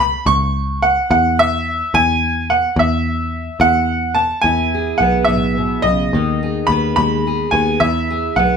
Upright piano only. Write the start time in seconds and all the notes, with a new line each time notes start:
0.00 B5
0.27 C#6
0.82 F#5
1.11 F#5
1.39 E5
1.95 G#5
2.50 F#5
2.79 E5
3.61 F#5
4.15 A5
4.42 G#5
4.98 F#5
5.25 E5
5.82 D#5
6.67 B5
6.96 B5
7.51 G#5
7.80 E5
8.36 F#5